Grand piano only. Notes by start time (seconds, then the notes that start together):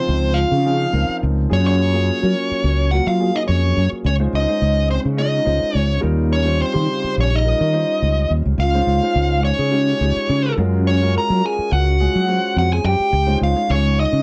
Already playing: C#3 F3 C4 D#4 F4
0.65 F3 C4 C#4 D#4 G#4
0.93 F3 C4 C#4 D#4 A#4
1.50 F#3 A#3 C#4 F4 G#4
1.93 F#3 A#3 C#4 F4 G#4
2.22 F#3 A#3 C#4 F4 A#4
2.92 F#3 A#3 C#4 F4 A#4
3.20 F#3 A#3 C#4 F4 G#4
4.19 G#3 C#4 D#4 F4 C5
4.49 G#3 C#4 D#4 F4 C5
5.17 G#3 C#4 D#4 F4 D#5
5.45 G#3 C#4 D#4 F4 C5
6.01 G3 C#4 D#4 F4 A#4
6.45 G3 C#4 D#4 F4 C5
6.73 C#3 G3 D#4 F4 G4
7.44 G3 C#4 D#4 F4 A#4
7.73 G3 C#4 D#4 F4 C5
8.74 G#3 C#4 D#4 F4 C5
9.02 G#3 C#4 D#4 F4 C5
9.71 G#3 C#4 D#4 F4 G4
10.01 G#3 C#4 D#4 F4 G4
10.58 G#3 C#4 F4 F#4 A#4
11.02 G#3 C#4 F4 F#4 A#4
11.29 G#3 C#4 F4 F#4 A#4
12.00 G#3 C#4 F4 F#4 G#4
12.28 G#3 C#4 F4 F#4 C5
13.27 G#3 C#4 D#4 F4 C5
13.56 G#3 C#4 D#4 F4 C#5